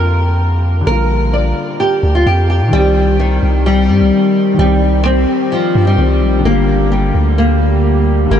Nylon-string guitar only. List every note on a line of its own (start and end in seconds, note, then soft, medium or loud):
0.00 0.83 A#4 medium
0.87 1.31 A#4 loud
1.33 1.77 D5 medium
1.80 2.13 G4 medium
2.15 2.26 F4 medium
2.27 2.48 G4 medium
2.50 2.71 G4 medium
2.73 3.17 G3 loud
3.19 3.63 D#3 medium
3.66 4.55 G3 loud
4.59 5.03 G3 loud
5.06 5.49 C4 medium
5.52 5.85 F3 medium
5.87 6.42 G3 medium
6.45 6.89 A#3 loud
6.92 7.35 G3 medium
7.38 8.27 A#3 medium
8.31 8.40 A#3 loud